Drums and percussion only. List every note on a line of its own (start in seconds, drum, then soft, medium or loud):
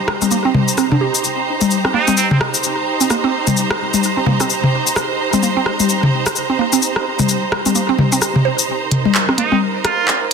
0.08 cross-stick medium
0.22 high tom medium
0.22 cabasa soft
0.31 cabasa soft
0.55 mid tom medium
0.55 high tom medium
0.68 cabasa soft
0.78 cross-stick soft
0.78 cabasa soft
0.92 mid tom medium
1.15 cabasa soft
1.24 cabasa soft
1.61 high tom medium
1.61 cabasa soft
1.71 cabasa soft
1.85 cross-stick soft
2.08 high tom medium
2.08 cabasa soft
2.17 cabasa soft
2.31 mid tom medium
2.41 cross-stick medium
2.54 cabasa soft
2.64 cabasa soft
3.01 cabasa soft
3.10 cross-stick soft
3.10 cabasa soft
3.47 mid tom medium
3.47 high tom medium
3.47 cabasa soft
3.57 cabasa soft
3.71 cross-stick medium
3.94 high tom medium
3.94 cabasa soft
4.03 cabasa soft
4.26 mid tom medium
4.26 high tom medium
4.40 cross-stick soft
4.40 cabasa soft
4.50 cabasa soft
4.64 mid tom medium
4.87 cabasa medium
4.96 cross-stick medium
4.96 cabasa soft
5.33 high tom medium
5.33 cabasa soft
5.43 cabasa soft
5.66 cross-stick soft
5.80 high tom medium
5.80 cabasa medium
5.89 cabasa soft
6.03 mid tom medium
6.26 cross-stick medium
6.26 cabasa medium
6.36 cabasa soft
6.73 cabasa medium
6.82 cabasa soft
6.96 cross-stick soft
7.19 mid tom medium
7.19 high tom medium
7.19 cabasa medium
7.29 cabasa soft
7.52 cross-stick medium
7.66 high tom medium
7.66 cabasa medium
7.75 cabasa soft
7.99 mid tom medium
7.99 high tom soft
8.12 cabasa medium
8.22 cross-stick soft
8.22 cabasa soft
8.36 mid tom medium
8.59 cabasa medium
8.91 closed hi-hat medium
8.91 mid tom medium
9.05 high tom medium
9.15 clap medium
9.29 cross-stick soft
9.38 closed hi-hat medium
9.52 high tom medium
9.85 cross-stick medium
9.85 closed hi-hat medium
10.08 clap loud